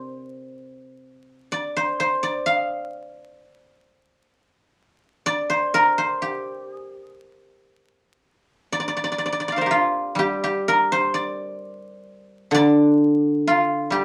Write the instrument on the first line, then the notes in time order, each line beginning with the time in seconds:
guzheng
Already playing: C3 A#4 C5 D5
1.52 D5
1.76 C5
2.00 C5
2.23 D5
2.46 F5
5.26 D5
5.50 C5
5.74 A#4
5.98 C5
6.22 G4
6.73 G#4
6.87 G4
7.02 G#4
7.16 G4
8.72 D5
8.80 D5
8.88 D5
8.97 D5
9.04 D5
9.12 D5
9.18 D5
9.26 D5
9.32 D5
9.40 D5
9.48 D5 F5
9.56 C5 D5
9.61 A#4
9.66 G4
9.71 F4
10.15 G3 G4
10.44 G4
10.68 A#4
10.92 C5
11.14 D5
12.51 D3 D5
13.48 F4
13.90 G3 G4